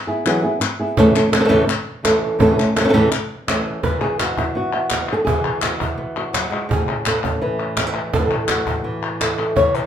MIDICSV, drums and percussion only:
0, 0, Header, 1, 3, 480
1, 0, Start_track
1, 0, Key_signature, 3, "major"
1, 0, Tempo, 357569
1, 1317, Time_signature, 4, 2, 24, 8
1, 13239, End_track
2, 0, Start_track
2, 0, Title_t, "Cajon"
2, 1306, Note_on_c, 9, 36, 97
2, 1440, Note_off_c, 9, 36, 0
2, 1785, Note_on_c, 9, 38, 97
2, 1920, Note_off_c, 9, 38, 0
2, 2018, Note_on_c, 9, 36, 77
2, 2153, Note_off_c, 9, 36, 0
2, 2511, Note_on_c, 9, 38, 29
2, 2646, Note_off_c, 9, 38, 0
2, 2749, Note_on_c, 9, 38, 100
2, 2883, Note_off_c, 9, 38, 0
2, 3222, Note_on_c, 9, 36, 95
2, 3357, Note_off_c, 9, 36, 0
2, 3470, Note_on_c, 9, 38, 28
2, 3604, Note_off_c, 9, 38, 0
2, 3711, Note_on_c, 9, 38, 96
2, 3846, Note_off_c, 9, 38, 0
2, 3944, Note_on_c, 9, 36, 74
2, 4078, Note_off_c, 9, 36, 0
2, 4439, Note_on_c, 9, 38, 29
2, 4573, Note_off_c, 9, 38, 0
2, 4676, Note_on_c, 9, 38, 101
2, 4810, Note_off_c, 9, 38, 0
2, 5147, Note_on_c, 9, 36, 83
2, 5281, Note_off_c, 9, 36, 0
2, 5391, Note_on_c, 9, 38, 27
2, 5526, Note_off_c, 9, 38, 0
2, 5635, Note_on_c, 9, 38, 85
2, 5769, Note_off_c, 9, 38, 0
2, 5873, Note_on_c, 9, 36, 72
2, 6007, Note_off_c, 9, 36, 0
2, 6117, Note_on_c, 9, 38, 25
2, 6251, Note_off_c, 9, 38, 0
2, 6351, Note_on_c, 9, 38, 28
2, 6486, Note_off_c, 9, 38, 0
2, 6594, Note_on_c, 9, 38, 96
2, 6728, Note_off_c, 9, 38, 0
2, 7074, Note_on_c, 9, 36, 86
2, 7208, Note_off_c, 9, 36, 0
2, 7557, Note_on_c, 9, 38, 92
2, 7692, Note_off_c, 9, 38, 0
2, 7801, Note_on_c, 9, 36, 74
2, 7936, Note_off_c, 9, 36, 0
2, 8516, Note_on_c, 9, 38, 92
2, 8650, Note_off_c, 9, 38, 0
2, 9006, Note_on_c, 9, 36, 89
2, 9140, Note_off_c, 9, 36, 0
2, 9483, Note_on_c, 9, 38, 89
2, 9617, Note_off_c, 9, 38, 0
2, 9730, Note_on_c, 9, 36, 72
2, 9864, Note_off_c, 9, 36, 0
2, 10433, Note_on_c, 9, 38, 92
2, 10568, Note_off_c, 9, 38, 0
2, 10921, Note_on_c, 9, 36, 89
2, 11055, Note_off_c, 9, 36, 0
2, 11397, Note_on_c, 9, 38, 96
2, 11531, Note_off_c, 9, 38, 0
2, 11636, Note_on_c, 9, 36, 69
2, 11770, Note_off_c, 9, 36, 0
2, 11878, Note_on_c, 9, 38, 28
2, 12013, Note_off_c, 9, 38, 0
2, 12123, Note_on_c, 9, 38, 29
2, 12257, Note_off_c, 9, 38, 0
2, 12365, Note_on_c, 9, 38, 91
2, 12499, Note_off_c, 9, 38, 0
2, 12839, Note_on_c, 9, 36, 89
2, 12973, Note_off_c, 9, 36, 0
2, 13239, End_track
3, 0, Start_track
3, 0, Title_t, "Drums"
3, 350, Note_on_c, 9, 39, 80
3, 484, Note_off_c, 9, 39, 0
3, 826, Note_on_c, 9, 39, 81
3, 960, Note_off_c, 9, 39, 0
3, 1555, Note_on_c, 9, 39, 73
3, 1689, Note_off_c, 9, 39, 0
3, 1792, Note_on_c, 9, 39, 84
3, 1926, Note_off_c, 9, 39, 0
3, 2275, Note_on_c, 9, 39, 79
3, 2409, Note_off_c, 9, 39, 0
3, 2754, Note_on_c, 9, 39, 82
3, 2888, Note_off_c, 9, 39, 0
3, 3486, Note_on_c, 9, 39, 71
3, 3620, Note_off_c, 9, 39, 0
3, 3721, Note_on_c, 9, 39, 81
3, 3855, Note_off_c, 9, 39, 0
3, 4189, Note_on_c, 9, 39, 83
3, 4324, Note_off_c, 9, 39, 0
3, 4680, Note_on_c, 9, 39, 82
3, 4814, Note_off_c, 9, 39, 0
3, 5636, Note_on_c, 9, 39, 75
3, 5770, Note_off_c, 9, 39, 0
3, 5878, Note_on_c, 9, 39, 42
3, 6012, Note_off_c, 9, 39, 0
3, 6578, Note_on_c, 9, 39, 83
3, 6712, Note_off_c, 9, 39, 0
3, 7542, Note_on_c, 9, 39, 83
3, 7676, Note_off_c, 9, 39, 0
3, 7793, Note_on_c, 9, 39, 41
3, 7928, Note_off_c, 9, 39, 0
3, 8275, Note_on_c, 9, 39, 46
3, 8409, Note_off_c, 9, 39, 0
3, 8521, Note_on_c, 9, 39, 80
3, 8655, Note_off_c, 9, 39, 0
3, 8764, Note_on_c, 9, 39, 42
3, 8898, Note_off_c, 9, 39, 0
3, 9473, Note_on_c, 9, 39, 81
3, 9607, Note_off_c, 9, 39, 0
3, 9711, Note_on_c, 9, 39, 46
3, 9845, Note_off_c, 9, 39, 0
3, 10196, Note_on_c, 9, 39, 42
3, 10330, Note_off_c, 9, 39, 0
3, 10433, Note_on_c, 9, 39, 80
3, 10567, Note_off_c, 9, 39, 0
3, 10661, Note_on_c, 9, 39, 46
3, 10795, Note_off_c, 9, 39, 0
3, 11386, Note_on_c, 9, 39, 84
3, 11521, Note_off_c, 9, 39, 0
3, 11642, Note_on_c, 9, 39, 44
3, 11776, Note_off_c, 9, 39, 0
3, 12367, Note_on_c, 9, 39, 81
3, 12501, Note_off_c, 9, 39, 0
3, 12603, Note_on_c, 9, 39, 43
3, 12737, Note_off_c, 9, 39, 0
3, 13239, End_track
0, 0, End_of_file